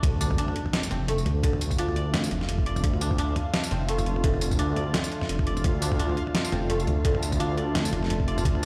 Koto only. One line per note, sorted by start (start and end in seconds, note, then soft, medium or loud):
0.00 1.08 A3 medium
0.00 0.70 C4 medium
0.00 0.20 D4 medium
0.00 1.28 D5 loud
0.20 0.38 D4 medium
0.38 1.78 D4 loud
0.91 3.51 C4 medium
1.08 3.88 A3 medium
1.43 4.23 D3 medium
1.78 3.01 D4 loud
1.96 2.66 D5 medium
2.66 4.26 D5 medium
3.01 3.18 D4 medium
3.19 4.59 D4 loud
3.71 6.31 C4 medium
3.89 6.69 A3 medium
4.24 7.04 D3 medium
4.59 5.81 D4 loud
4.77 5.46 D5 medium
5.47 7.07 D5 medium
5.82 5.99 D4 medium
5.99 7.39 D4 loud
6.52 8.65 C4 medium
6.70 8.65 A3 medium
7.05 8.65 D3 medium
7.40 8.62 D4 loud
7.57 8.27 D5 medium
8.28 8.65 D5 medium